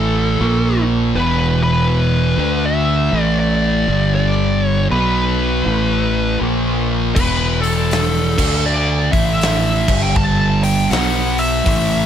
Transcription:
Already playing: A1 A2 E3 A3 A4
0.40 A#1 A#2 F3 A#3
1.15 E1 E2 B2 E3 B4
1.63 B4
2.38 D2 D3 A3 D4
2.65 E5
3.12 A1 A2 E3 A3
3.22 D5
3.40 D5
3.88 G1 G2 D3 G3
4.15 D5
4.64 C#5
4.91 B1 B2 F#3 B3 B4
5.65 A1 A2 E3 A3
6.40 A#1 A#2 F3 A#3
7.15 E1 E2 B2 E3 B4, kick, crash
7.62 A4, open hi-hat
7.91 snare, open hi-hat
8.37 D2 D3 A3 D4, kick, snare, crash
8.66 D5
9.12 A1 A2 E3 A3 E5, kick, open hi-hat
9.26 E5
9.41 snare, open hi-hat
9.88 G1 G2 D3 G3, kick, crash
10.02 G5
10.16 A5, kick
10.63 G5, open hi-hat
10.91 B1 B2 F#3 B3 F#5, snare, open hi-hat
11.38 E5, open hi-hat
11.65 A1 A2 E3 A3, kick, open hi-hat

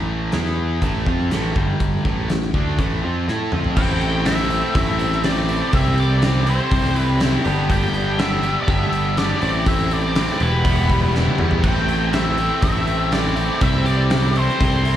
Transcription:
Already playing: A1 A2 E3 A3
0.32 E2 E3 B3 E4, snare, closed hi-hat
0.45 snare
0.81 A1 A2 E3 A3, kick, closed hi-hat
1.06 F2 F3 C4 F4, kick
1.31 A1 A2 E3 A3, snare, closed hi-hat
1.55 G1 G2 D3 G3, kick
1.80 kick, closed hi-hat
2.05 A1 A2 E3 A3, kick
2.30 A1 A2 E3, snare, closed hi-hat
2.42 snare
2.54 D2 D3 A3 D4, kick
2.79 A1 A2 E3 A3, kick, closed hi-hat
3.02 F2 F3 C4 F4
3.27 A2 A3 E4 A4, snare
3.52 F2 F3 C4 F4, mid tom
3.64 floor tom
3.76 A1 A2 E3 A3 C4 E4 C5 G5, kick, crash
4.01 A3 C4 E4, open hi-hat
4.26 E3 A3 C4 E4 E5, snare, open hi-hat
4.50 A2 E3 A3 C4 E4, open hi-hat
4.75 A1 A2 E3 A3 C4 E4 E5, kick, open hi-hat
4.99 A3 C4 E4, open hi-hat
5.12 snare
5.23 A2 E3 A3 C4 E4 D5, snare, open hi-hat
5.48 A3 C4 E4, open hi-hat
5.73 C2 C3 E3 G3 A3 C4 E4 C5 E5, kick, open hi-hat
5.96 G3 C4 E4 D5, open hi-hat
6.22 C3 E3 G3 C4 E4, snare, open hi-hat
6.46 C3 G3 C4 E4, open hi-hat
6.50 C5
6.71 C2 C3 E3 G3 C4 E4, kick, open hi-hat
6.85 snare
6.95 G3 C4 E4 B4, open hi-hat
7.20 C3 E3 G3 C4 E4, snare, open hi-hat
7.45 G1 G2 D3 G3 B3 D4 G4 B4, open hi-hat
7.69 G1 G2 D3 G3 B3 D4 G4 G5, kick, open hi-hat
7.93 G3 B3 D4, open hi-hat
8.19 D3 G3 B3 D4 G4 E5, snare, open hi-hat
8.43 G2 D3 G3 B3 D4 G4, open hi-hat
8.61 D5
8.67 G1 G2 D3 G3 B3 D4 G4 E5, kick, open hi-hat
8.92 G3 B3 D4, open hi-hat
9.17 G2 D3 G3 B3 D4 G4 D5, snare, open hi-hat
9.42 A1 A2 E3 A3 C4 E4 C5, open hi-hat
9.66 A2 E3 A3 C4 E4 E5, kick, open hi-hat
9.91 A3 C4 E4 D5, open hi-hat
10.16 E3 A3 C4 E4, snare, open hi-hat
10.40 E1 E2 B2 E3 G3 B3 E4 B4, open hi-hat
10.65 E2 B2 E3 G3 B3 E4, kick, open hi-hat
10.89 G3 B3 E4, kick, open hi-hat
11.15 E3 G3 B3 E4, snare
11.26 high tom
11.38 E2 E3 G3 B3 E4, mid tom
11.51 floor tom
11.64 A1 A2 E3 A3 C4 E4 C5 G5, kick, crash
11.89 A3 C4 E4, open hi-hat
12.13 E3 A3 C4 E4 E5, snare, open hi-hat
12.38 A2 E3 A3 C4 E4, open hi-hat
12.62 A1 A2 E3 A3 C4 E4 E5, kick, open hi-hat
12.87 A3 C4 E4, open hi-hat
13.11 A2 E3 A3 C4 E4 D5, snare, open hi-hat
13.35 A3 C4 E4, open hi-hat
13.60 C2 C3 E3 G3 A3 C4 E4 C5 E5, kick, open hi-hat
13.86 G3 C4 E4 D5, open hi-hat
14.10 C3 E3 G3 C4 E4, snare, open hi-hat
14.35 C3 G3 C4 E4 C5, open hi-hat
14.49 snare
14.59 C2 C3 E3 G3 C4 E4, kick, open hi-hat
14.85 G3 C4 E4, open hi-hat

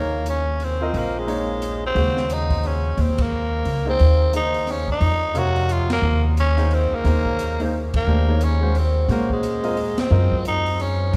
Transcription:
Already playing: D#2 A#3 D#4 G#4 C#5
0.26 C#4, closed hi-hat
0.60 C4, open hi-hat
0.81 C4 F4 A#4 D#5
0.94 A#1, open hi-hat
0.98 A#3
1.18 G#3
1.27 A#3 D#4 G#4 C#5, open hi-hat
1.62 closed hi-hat
1.86 C4
1.95 D#2 C#3 G#3 F#4 C5, open hi-hat
2.17 snare
2.30 D#4, closed hi-hat
2.50 kick, open hi-hat
2.63 C#4, open hi-hat
2.97 D#2 C4, open hi-hat
3.18 A#3, kick, ride
3.65 C#2, open hi-hat
3.85 A#3 D#4 G#4 C5
3.89 C4
3.99 D#2, open hi-hat
4.33 A#3 D#4 G#4 C5, closed hi-hat
4.54 open hi-hat
4.67 C#4, snare, open hi-hat
4.88 D#4, kick
5.01 F2, open hi-hat
5.34 C3 F#4 A#4 C#5 F5, closed hi-hat
5.56 open hi-hat
5.69 F4, closed hi-hat
5.90 A#3, snare, ride
6.02 D#2
6.37 C#4, closed hi-hat
6.57 A#3 D#4 G#4 C5, snare, open hi-hat
6.71 C4, open hi-hat
6.92 A#3, muted upright bass stroke
7.04 D#2 A#3 D#4 G#4 C5, snare, open hi-hat
7.26 kick
7.39 closed hi-hat
7.60 A#3 D#4 G#4 C5, open hi-hat
7.94 A#3, kick, ride
8.07 D#2 A3 D4 G4 C5
8.27 A#3 D#4 G#4 C#5
8.41 C#4, closed hi-hat
8.61 G#3 C#4 F#4 C5
8.75 C4, open hi-hat
9.08 A#2 G#3 A#3 C#4 F#4 C5, snare, open hi-hat
9.30 G#3, kick
9.43 closed hi-hat
9.63 C4 F4 A#4 D#5, open hi-hat
9.77 open hi-hat
9.98 C4, snare, ride
10.10 F#2 C4 F4 A#4 D#5
10.32 kick
10.45 D#4, closed hi-hat
10.66 open hi-hat
10.80 C#4, open hi-hat
11.13 A#2, snare, open hi-hat

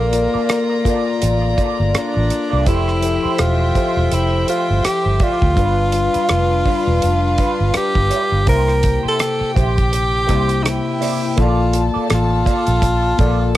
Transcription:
Already playing: A#1 A#3 F4 A4 D5 A#5
0.11 A#3 F4 A#4 D5, muted clean electric guitar stroke, closed hi-hat
0.34 D4 F4 A4 D5, muted fingered electric bass stroke
0.49 muted clean electric guitar stroke, cross-stick, closed hi-hat
0.70 muted clean electric guitar stroke
0.84 A#3 D4 F4 A4 A#4 D5, kick, closed hi-hat
1.05 muted clean electric guitar stroke
1.21 A1, muted clean electric guitar stroke, closed hi-hat
1.42 muted clean electric guitar stroke
1.57 D4 F4 A4 D5, kick, closed hi-hat
1.78 G1, muted clean electric guitar stroke
1.93 D4, muted clean electric guitar stroke, cross-stick, closed hi-hat
2.14 A1, muted clean electric guitar stroke
2.30 cross-stick, closed hi-hat
2.50 C2 D4 F4 A4 D5
2.66 F1 F3 A3 E4 G4 A4 C5 E5 G5, kick, closed hi-hat
2.88 cross-stick
3.02 F3 E4 G4 A4, muted clean electric guitar stroke, closed hi-hat
3.23 A3 E4 G4 C5, muted fingered electric bass stroke
3.38 E1 F4, muted clean electric guitar stroke, cross-stick, closed hi-hat
3.59 muted clean electric guitar stroke
3.74 F3 A3 E4 G4 A4 C5 E5, kick, closed hi-hat
3.96 E1, muted clean electric guitar stroke
4.11 F1 E4, muted clean electric guitar stroke, closed hi-hat
4.32 muted clean electric guitar stroke
4.47 A3 E4 F4 G4 C5, closed hi-hat
4.68 G1, muted clean electric guitar stroke
4.83 G4, muted clean electric guitar stroke, cross-stick, closed hi-hat
5.04 G1, muted clean electric guitar stroke
5.20 A3 E4 F4 G4 D5, kick, closed hi-hat
5.41 D2, muted clean electric guitar stroke, kick
5.55 G1 G3 D4 F4 B4 F5, kick, closed hi-hat
5.92 G3 D4 F4 B4, muted clean electric guitar stroke, closed hi-hat
6.13 G3 D4 F4 B4, muted fingered electric bass stroke, closed hi-hat
6.29 F1, muted clean electric guitar stroke, cross-stick, closed hi-hat
6.51 muted clean electric guitar stroke
6.65 G3 D4 F4 B4, kick, open hi-hat
6.87 E1
7.01 F1, muted clean electric guitar stroke, closed hi-hat
7.23 muted clean electric guitar stroke
7.38 G3 D4 F4 B4, kick, closed hi-hat
7.59 G1, muted clean electric guitar stroke
7.74 G4, muted clean electric guitar stroke, cross-stick, closed hi-hat
7.95 G1, muted clean electric guitar stroke, kick
8.10 G3 D4 F4 D5, cross-stick, closed hi-hat
8.32 G1, muted clean electric guitar stroke
8.46 C2 C3 A#3 E4 G4 A#4 C5 G5, kick, closed hi-hat
8.68 cross-stick
8.83 muted clean electric guitar stroke, kick, closed hi-hat
9.03 A#3 E4 G4 C5, muted fingered electric bass stroke
9.08 A4
9.19 muted clean electric guitar stroke, cross-stick, closed hi-hat
9.40 muted clean electric guitar stroke, muted fingered electric bass stroke
9.54 A#1 A#3 E4 F#4 G4 C5, kick, closed hi-hat
9.59 G4
9.76 muted clean electric guitar stroke, kick, closed hi-hat
9.91 muted clean electric guitar stroke, closed hi-hat
10.12 muted clean electric guitar stroke
10.27 C2 C3 A#3 E4 G4 C5, kick, closed hi-hat
10.31 C5
10.49 muted clean electric guitar stroke, closed hi-hat
10.63 D#4, muted clean electric guitar stroke, cross-stick, closed hi-hat
10.69 E4
10.85 muted clean electric guitar stroke
11.00 C3 A#3 E4 G4 D5, cross-stick, open hi-hat
11.04 C5
11.21 muted clean electric guitar stroke
11.36 A#1 A#3 F4 A4 D5 A5, kick, closed hi-hat
11.42 F4
11.73 muted clean electric guitar stroke, closed hi-hat
11.94 A#3 F4 A4 D5, muted fingered electric bass stroke
12.09 A1, muted clean electric guitar stroke, cross-stick, closed hi-hat
12.14 F4
12.31 muted clean electric guitar stroke
12.45 A#3 F4 A4 D5, kick, closed hi-hat
12.66 A#1, muted clean electric guitar stroke, closed hi-hat
12.82 muted clean electric guitar stroke, kick, closed hi-hat
13.03 muted clean electric guitar stroke
13.18 A#1 A#3 F4 A4 D5, kick, closed hi-hat
13.40 muted clean electric guitar stroke

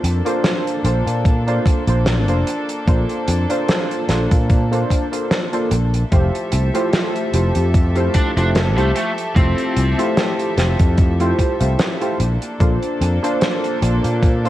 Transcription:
Already playing: A#3 D4 F4 A4 C5
0.04 F2, closed hi-hat
0.25 A#3 D4 F4 A4 C5, closed hi-hat
0.44 snare, closed hi-hat
0.67 closed hi-hat
0.84 A#1 A#3 D4 F4 A4 C5, closed hi-hat
1.06 A#2, closed hi-hat
1.25 kick, closed hi-hat
1.47 A#3 D4 F4 A4 C5, closed hi-hat
1.66 kick, closed hi-hat
1.87 A#1 A#3 D4 F4 A4 C5, closed hi-hat
2.06 snare, closed hi-hat
2.28 F1 A#3 D4 F4 A4 C5, closed hi-hat
2.47 closed hi-hat
2.69 closed hi-hat
2.87 A#1 A#3 D4 F4 A4 C5, kick, closed hi-hat
3.09 closed hi-hat
3.28 F2, closed hi-hat
3.49 A#3 D4 F4 A4 C5, closed hi-hat
3.68 snare, closed hi-hat
3.91 closed hi-hat
4.08 A#1 A#3 D4 F4 A4 C5, snare, closed hi-hat
4.31 A#2, kick, closed hi-hat
4.50 kick, closed hi-hat
4.71 A#3 D4 F4 A4 C5, closed hi-hat
4.90 kick, closed hi-hat
5.11 A#3 D4 F4 A4 C5, closed hi-hat
5.31 snare, closed hi-hat
5.52 A#3 D4 F4 A4 C5, closed hi-hat
5.71 A#1, closed hi-hat
5.94 closed hi-hat
6.11 F1 F3 A3 E4 F4 G4 A4 C5 E5, kick, closed hi-hat
6.35 closed hi-hat
6.52 C2, closed hi-hat
6.74 A3 E4 F4 G4 C5, closed hi-hat
6.93 snare, closed hi-hat
7.16 closed hi-hat
7.33 F1 A3 E4 F4 G4 C5, closed hi-hat
7.55 F2, closed hi-hat
7.74 kick, closed hi-hat
7.95 A3 E4 F4 G4 C5, closed hi-hat
8.14 D4, kick, closed hi-hat
8.36 F1 A3 D4 E4 F4 G4 C5, closed hi-hat
8.55 snare, closed hi-hat
8.76 C2 A3 E4 F4 G4 C5, closed hi-hat
8.96 A3, closed hi-hat
9.18 closed hi-hat
9.36 F1 A3 C4 E4 F4 G4 C5, kick, closed hi-hat
9.58 closed hi-hat
9.77 C2, closed hi-hat
9.98 A3 E4 F4 G4 C5, closed hi-hat
10.17 snare, closed hi-hat
10.39 closed hi-hat
10.57 F1 A3 E4 F4 G4 C5, snare, closed hi-hat
10.79 F2, kick, closed hi-hat
10.98 kick, closed hi-hat
11.20 A3 E4 F4 G4 C5, closed hi-hat
11.39 kick, closed hi-hat
11.60 C2 A3 E4 F4 G4 C5, closed hi-hat
11.79 snare, closed hi-hat
12.00 A3 E4 F4 G4 C5, closed hi-hat
12.20 A#1 A#3 D4 A4, closed hi-hat
12.42 closed hi-hat
12.60 A#1 A#3 D4 F4 A4 C5, kick, closed hi-hat
12.83 closed hi-hat
13.01 F2, closed hi-hat
13.23 A#3 D4 F4 A4 C5, closed hi-hat
13.41 snare, closed hi-hat
13.64 closed hi-hat
13.81 A#1 A#3 D4 F4 A4 C5, closed hi-hat
14.04 A#2, closed hi-hat
14.23 kick, closed hi-hat
14.44 A#3 D4 F4 A4 C5, closed hi-hat

